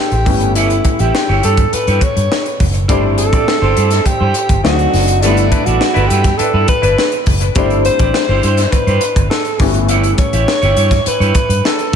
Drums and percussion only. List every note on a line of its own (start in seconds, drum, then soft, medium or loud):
0.12 closed hi-hat soft
0.26 kick medium
0.26 open hi-hat medium
0.40 closed hi-hat soft
0.55 closed hi-hat medium
0.70 closed hi-hat soft
0.84 kick medium
0.84 closed hi-hat medium
0.99 closed hi-hat soft
1.15 snare loud
1.43 closed hi-hat medium
1.57 kick medium
1.57 closed hi-hat soft
1.73 closed hi-hat medium
1.87 closed hi-hat soft
2.01 kick medium
2.01 closed hi-hat medium
2.17 closed hi-hat soft
2.32 snare loud
2.46 closed hi-hat soft
2.60 kick medium
2.60 open hi-hat medium
2.74 closed hi-hat soft
2.89 kick loud
2.89 closed hi-hat medium
3.18 closed hi-hat medium
3.33 kick medium
3.33 closed hi-hat soft
3.48 snare loud
3.77 closed hi-hat medium
3.91 snare soft
3.91 closed hi-hat soft
4.06 kick medium
4.06 closed hi-hat medium
4.34 closed hi-hat medium
4.49 kick medium
4.49 closed hi-hat medium
4.65 snare loud
4.79 closed hi-hat soft
4.93 snare soft
4.93 open hi-hat medium
5.07 closed hi-hat soft
5.23 closed hi-hat medium
5.37 closed hi-hat soft
5.52 kick medium
5.52 closed hi-hat medium
5.66 closed hi-hat soft
5.81 snare loud
5.96 closed hi-hat soft
6.10 closed hi-hat medium
6.24 kick medium
6.24 snare soft
6.24 closed hi-hat soft
6.39 closed hi-hat medium
6.68 kick medium
6.68 closed hi-hat medium
6.83 closed hi-hat medium
6.98 snare loud
7.12 closed hi-hat soft
7.26 kick medium
7.26 open hi-hat medium
7.41 closed hi-hat soft
7.55 kick loud
7.55 closed hi-hat medium
7.70 closed hi-hat soft
7.85 closed hi-hat medium
7.99 kick medium
7.99 closed hi-hat soft
8.14 snare loud
8.43 closed hi-hat medium
8.57 snare soft
8.57 closed hi-hat soft
8.72 kick medium
8.72 closed hi-hat medium
8.87 closed hi-hat soft
9.01 closed hi-hat medium
9.16 kick medium
9.16 closed hi-hat soft
9.31 snare loud
9.45 closed hi-hat soft
9.59 kick loud
9.59 snare soft
9.59 open hi-hat medium
9.74 closed hi-hat soft
9.88 closed hi-hat medium
10.04 closed hi-hat soft
10.18 kick medium
10.18 closed hi-hat medium
10.33 closed hi-hat medium
10.48 snare loud
10.62 closed hi-hat soft
10.77 closed hi-hat medium
10.91 kick medium
10.91 snare soft
10.91 closed hi-hat soft
11.06 closed hi-hat medium
11.21 closed hi-hat soft
11.35 kick loud
11.35 closed hi-hat medium
11.50 closed hi-hat medium
11.65 snare loud
11.79 closed hi-hat soft